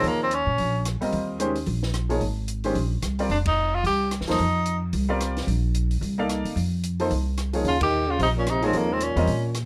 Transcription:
Already playing: F3 A#3 D#4 G#4 C#5
0.02 D#2, open hi-hat
0.07 A#3
0.23 C4
0.31 C#4, closed hi-hat
0.46 A#2
0.58 A#1, open hi-hat
0.85 cross-stick, closed hi-hat
1.01 G3 C4 F4 A#4 D#5, muted upright bass stroke, open hi-hat
1.12 D#2, open hi-hat
1.39 D#3 G#3 C#4 G4 C5, closed hi-hat
1.55 open hi-hat
1.66 A#1, open hi-hat
1.83 snare
1.94 cross-stick, closed hi-hat
2.09 F3 A#3 D#4 G#4 C#5, open hi-hat
2.20 G#1, open hi-hat
2.48 closed hi-hat
2.64 D#3 G#3 C#4 G4 C5, open hi-hat
2.75 A#1, open hi-hat
3.02 C2, cross-stick, closed hi-hat
3.19 G3 C4 F4 A#4 D5, open hi-hat
3.29 F1 D4, open hi-hat
3.46 D#4, kick, ride
3.75 F4
3.84 C2 G4, open hi-hat
4.11 cross-stick, closed hi-hat
4.21 D2, snare
4.27 D#2 F3 A#3 D#4 A4 C5, snare, open hi-hat
4.38 F2, open hi-hat
4.66 closed hi-hat
4.93 C2, open hi-hat
5.09 G3 C4 F4 A#4 D5
5.20 cross-stick, closed hi-hat
5.37 snare, open hi-hat
5.47 A#1, open hi-hat
5.74 closed hi-hat
5.91 open hi-hat
6.01 C2, open hi-hat
6.18 A#3 D#4 A4 D5 F5
6.29 cross-stick, closed hi-hat
6.44 C3, open hi-hat
6.56 F2, open hi-hat
6.83 closed hi-hat
6.99 F3 A#3 D#4 A4 C5, open hi-hat
7.10 C2, open hi-hat
7.37 cross-stick, closed hi-hat
7.53 F3 A#3 D#4 G#4 C#5, open hi-hat
7.64 D#2 C#3 F4, open hi-hat
7.81 D#3 G4, kick, ride
8.09 C#3 F4
8.19 A#1 C3 D#4, open hi-hat
8.37 A#2 C#4
8.46 C3 D#4, cross-stick, closed hi-hat
8.62 G#2 F3 A#3 C4 D#4 G#4 C#5, open hi-hat
8.73 D#2 F2, open hi-hat
8.77 A#3
8.93 G#2 C4
9.00 A#2 C#4, closed hi-hat
9.16 E2 G3 C4 F4 A#4 D#5, open hi-hat
9.27 A#2, open hi-hat
9.54 cross-stick, closed hi-hat

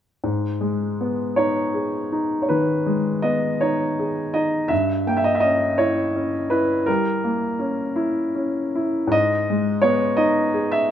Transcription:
0.24 G#2
0.61 G#3
1.01 B3
1.36 D#4 C#5
1.74 G#4
2.12 D#4
2.42 C#5
2.49 D#3 B4
2.86 G#3
3.22 B3 D#5
3.61 D#4 C#5
3.99 G#4
4.34 D#4 D#5
4.68 G2 E5
5.07 A#3 G5
5.17 E5
5.24 D#5
5.35 E5
5.40 C#4 D#5
5.78 E4 C#5
6.16 C#4
6.50 E4 B4
6.86 G3 A#4
7.24 A#3
7.59 C#4
7.96 E4
8.35 C#4
8.75 E4
9.07 G#2
9.12 D#5
9.50 G#3
9.82 B3 C#5
10.17 D#4 D#5
10.54 G#4
10.72 E5

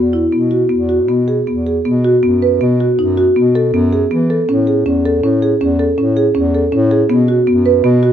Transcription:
Already playing: E2
0.13 E4
0.32 B2 B3
0.51 F#4
0.69 E2 B3
0.89 F#4
1.08 B2 B3
1.28 G#4
1.47 E2 B3
1.67 G#4
1.85 B2 B3
2.04 F#4
2.23 F#2 B3
2.42 B4
2.61 B2 B3
2.80 F#4
2.99 F#2 D#4
3.17 F#4
3.36 B2 B3
3.55 A4
3.73 F#2 B3
3.93 G#4
4.11 E3 B3
4.30 A4
4.49 A2 C#4
4.67 G#4
4.86 E2 C#4
5.06 A4
5.22 A2 C#4
5.42 G#4
5.61 E2 C#4
5.79 A4
5.98 A2 C#4
6.17 G#4
6.35 E2 C#4
6.55 A4
6.72 A2 C#4
6.91 G#4
7.10 B2 B3
7.28 F#4
7.47 F#2 B3
7.66 B4
7.84 B2 B3
8.03 F#4

